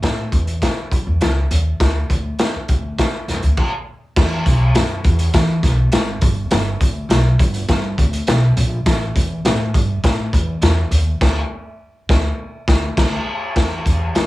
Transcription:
0.02 upright bass A2, snare, closed hi-hat
0.32 upright bass E2, kick, closed hi-hat
0.47 closed hi-hat
0.62 kick, snare, closed hi-hat
0.91 upright bass F#2, kick, closed hi-hat
1.07 upright bass E2
1.21 upright bass C#2, snare, closed hi-hat
1.51 upright bass D#2, closed hi-hat
1.80 upright bass D2, kick, snare, closed hi-hat
2.10 upright bass D2, kick, closed hi-hat
2.39 snare, closed hi-hat
2.55 muted upright bass stroke
2.68 upright bass D2, kick, closed hi-hat
2.98 kick, snare, closed hi-hat
3.28 upright bass F#2, snare, closed hi-hat
3.42 upright bass D2, closed hi-hat
3.57 kick, crash
4.16 upright bass E2, kick, snare, crash
4.46 upright bass B1, kick, closed hi-hat
4.75 upright bass F#2, snare, closed hi-hat
5.04 upright bass E2, kick, closed hi-hat
5.19 closed hi-hat
5.33 upright bass E3, kick, snare, closed hi-hat
5.63 upright bass B1, kick, snare, closed hi-hat
5.92 upright bass G#1, snare, closed hi-hat
6.21 upright bass G1, kick, closed hi-hat
6.51 upright bass G1, snare, closed hi-hat
6.80 upright bass D2, kick, closed hi-hat
7.09 upright bass B1, snare, closed hi-hat
7.39 upright bass G1, kick, closed hi-hat
7.54 closed hi-hat
7.68 upright bass G2, kick, snare, closed hi-hat
7.98 upright bass D2, kick, closed hi-hat
8.13 closed hi-hat
8.27 upright bass B1, snare, closed hi-hat
8.57 upright bass A#1, closed hi-hat
8.86 upright bass A1, kick, snare, closed hi-hat
9.16 upright bass E2, kick, closed hi-hat
9.45 upright bass A2, snare, closed hi-hat
9.74 upright bass G2, kick, closed hi-hat
10.04 upright bass A2, kick, snare, closed hi-hat
10.33 upright bass E2, kick, closed hi-hat
10.61 upright bass E2, snare, closed hi-hat
10.91 upright bass D#2, closed hi-hat
11.21 upright bass D2, kick, snare, crash
12.09 upright bass D2, kick, snare
12.68 upright bass D2, kick, snare
12.97 upright bass D2, kick, snare, crash
13.56 upright bass E2, kick, snare, crash
13.86 upright bass E2, kick, closed hi-hat
14.15 upright bass E3, snare, closed hi-hat

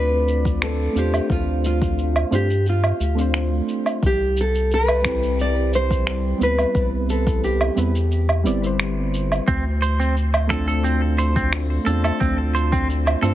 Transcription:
Already playing: analog synth bass D2, synth keys A3 C4 D4 F4 D5, nylon-string guitar B4
0.28 shaker
0.45 kick, shaker
0.62 nylon-string guitar A4, finger snap, shaker
0.93 analog synth bass E2, synth keys A3 C4 D4, shaker
0.97 synth keys F4 C5, nylon-string guitar G4
1.14 low woodblock, shaker
1.30 analog synth bass D2, nylon-string guitar F4, kick, shaker
1.65 nylon-string guitar F4, shaker
1.82 kick, shaker
1.98 shaker
2.16 low woodblock
2.31 analog synth bass G2, synth keys A3 C4 D4 F4 C5, shaker
2.35 nylon-string guitar G4
2.50 shaker
2.66 nylon-string guitar F4, shaker
2.84 low woodblock
3.00 analog synth bass D2, shaker
3.15 synth keys A3 C4 D4, shaker
3.19 synth keys F4 C5
3.34 finger snap, shaker
3.69 shaker
3.86 low woodblock, shaker
4.03 analog synth bass C2, nylon-string guitar G4, kick, shaker
4.37 nylon-string guitar A4, shaker
4.55 shaker
4.71 nylon-string guitar B4, shaker
4.88 low woodblock
5.02 synth keys G3 C4, finger snap, kick, shaker
5.06 synth keys E4 G4
5.23 shaker
5.39 nylon-string guitar D5, shaker
5.73 nylon-string guitar C5, shaker
5.91 kick, shaker
6.07 finger snap, shaker
6.38 analog synth bass D2, synth keys G3 B3 C4, shaker
6.42 synth keys E4 B4, nylon-string guitar B4
6.58 low woodblock, shaker
6.75 analog synth bass C2, kick, shaker
7.09 nylon-string guitar A4, shaker
7.27 kick, shaker
7.44 nylon-string guitar G4, shaker
7.61 low woodblock
7.76 analog synth bass E2, synth keys G3 B3 C4 E4 B4, shaker
7.95 shaker
8.11 shaker
8.29 low woodblock
8.43 analog synth bass G1, synth keys G3 B3 C4 E4 D5, shaker
8.60 synth keys G3 C4 B4, shaker
8.65 synth keys E4 C5
8.80 finger snap, shaker
9.14 shaker
9.32 low woodblock, shaker
9.48 analog synth bass D2, clean electric guitar C4, kick, shaker
9.82 clean electric guitar C5, shaker
10.00 clean electric guitar C4, shaker
10.17 shaker
10.34 low woodblock
10.47 synth keys A3 C4 D4, clean electric guitar A4, finger snap, kick, shaker
10.52 synth keys F4 C5
10.68 clean electric guitar A4, shaker
10.84 clean electric guitar C4, shaker
11.18 clean electric guitar C5, shaker
11.36 clean electric guitar C4, kick, shaker
11.53 finger snap, shaker
11.84 analog synth bass E2, synth keys A3 C4 D4, clean electric guitar A4, shaker
11.89 synth keys F4 C5
12.04 clean electric guitar A4, low woodblock, shaker
12.20 analog synth bass D2, clean electric guitar C4, kick, shaker
12.55 clean electric guitar C5, shaker
12.72 clean electric guitar C4, kick, shaker
12.90 shaker
13.07 low woodblock
13.22 analog synth bass G2, synth keys A3 C4 D4 F4 C5, clean electric guitar A4, shaker

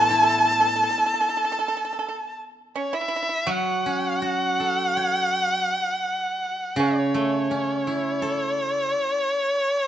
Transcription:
Already playing: guzheng A2 E3 A3 B3, erhu A5, dizi A5
0.01 pipa A4
0.09 guzheng E4, pipa A4
0.23 pipa A4
0.29 pipa A4
0.38 pipa A4
0.45 pipa A4
0.52 pipa A4
0.60 pipa A4
0.68 pipa A4
0.76 pipa A4
0.83 pipa A4
0.91 pipa A4
0.98 pipa A4
1.06 pipa A4
1.14 pipa A4
1.21 pipa A4
1.29 pipa A4
1.37 pipa A4
1.44 pipa A4
1.52 pipa A4
1.59 pipa A4
1.68 pipa A4
1.77 pipa A4
1.85 pipa A4
1.93 pipa A4
1.99 pipa A4
2.08 pipa A4
2.76 pipa C#4, erhu C#5
2.93 pipa E4, erhu E5
3.01 pipa E4
3.08 pipa E4
3.16 pipa E4
3.22 pipa E4
3.29 pipa E4
3.47 guzheng F#3, pipa F#4
3.51 erhu F#5
3.86 guzheng C#4
4.22 guzheng F#4
4.60 guzheng A4
4.97 guzheng C#5
6.76 guzheng C#3, pipa C#4
6.82 erhu C#5
7.14 guzheng A3
7.51 guzheng C#4
7.87 guzheng E4
8.22 guzheng A4
9.33 pipa C4

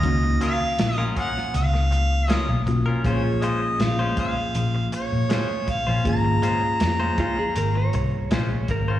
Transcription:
Already playing: harmonica D#5
0.03 fingered electric bass C#2, tine electric piano A#3 C#4 D#4 F#4, kick, closed hi-hat
0.23 muted clean electric guitar stroke
0.41 clean electric guitar F#3 C#4 F4 A#4, harmonica F5, closed hi-hat
0.60 muted clean electric guitar stroke, muted fingered electric bass stroke
0.79 fingered electric bass A#1, snare, closed hi-hat
0.95 clean electric guitar F4 A#4, harmonica D#5
0.99 clean electric guitar F#3 C#4
1.16 clean electric guitar F#3 C#4 F4 A#4, harmonica F#5, kick, closed hi-hat
1.36 muted clean electric guitar stroke, snare
1.54 fingered electric bass C#2, harmonica F5, muted clean electric guitar stroke, closed hi-hat
1.74 muted clean electric guitar stroke, snare
1.91 muted clean electric guitar stroke, closed hi-hat
2.28 clean electric guitar F#3 C#4 F4 A#4, harmonica D#5, snare, closed hi-hat
2.48 fingered electric bass B1, muted clean electric guitar stroke
2.66 tine electric piano A#3 C#4 F4 F#4, muted clean electric guitar stroke, kick, closed hi-hat
2.86 clean electric guitar C#4 F4 A#4
3.04 fingered electric bass A#1, clean electric guitar G#3 C#4 F4 C5, tine electric piano A#3 C#4 F4 G#4, harmonica C#5, kick, closed hi-hat
3.24 muted clean electric guitar stroke
3.42 clean electric guitar G#3 C#4 F4 C5, harmonica D#5, closed hi-hat
3.62 muted clean electric guitar stroke
3.80 fingered electric bass A#1, harmonica F5, snare, closed hi-hat
3.99 clean electric guitar G#3 C#4 F4 C5
4.17 clean electric guitar G#3 C#4 F4 C5, harmonica F5, kick, closed hi-hat
4.37 muted clean electric guitar stroke
4.55 fingered electric bass A#1, muted clean electric guitar stroke, closed hi-hat
4.75 muted clean electric guitar stroke
4.92 harmonica C#5, muted clean electric guitar stroke, closed hi-hat
5.12 fingered electric bass A#2
5.30 clean electric guitar G#3 C#4 F4 C5, snare, closed hi-hat
5.49 muted clean electric guitar stroke
5.67 harmonica F5, muted clean electric guitar stroke, kick, closed hi-hat
5.87 fingered electric bass A#1, clean electric guitar C#4 F4 C5
6.04 fingered electric bass G#1, tine electric piano A#3 C#4 F4 G#4, kick, closed hi-hat
6.08 harmonica A#5
6.25 muted clean electric guitar stroke
6.42 clean electric guitar G#3 C#4 F4 C5, closed hi-hat
6.62 muted clean electric guitar stroke, muted fingered electric bass stroke
6.80 fingered electric bass F2, snare, closed hi-hat
7.00 clean electric guitar G#3 C#4 F4 C5
7.18 clean electric guitar G#3 C#4 F4 C5, electric slide guitar F4, kick, closed hi-hat
7.38 electric slide guitar G#4, muted clean electric guitar stroke
7.56 fingered electric bass G#1, electric slide guitar A#4, muted clean electric guitar stroke, closed hi-hat
7.75 electric slide guitar C#5, muted clean electric guitar stroke
7.93 fingered electric bass C2, muted clean electric guitar stroke, closed hi-hat
8.31 fingered electric bass A#1, clean electric guitar G#3 C#4 F4 C5, snare, closed hi-hat
8.51 muted clean electric guitar stroke
8.68 fingered electric bass G#1, electric slide guitar A#4, muted clean electric guitar stroke, kick, closed hi-hat
8.88 clean electric guitar C#4 F4 C5

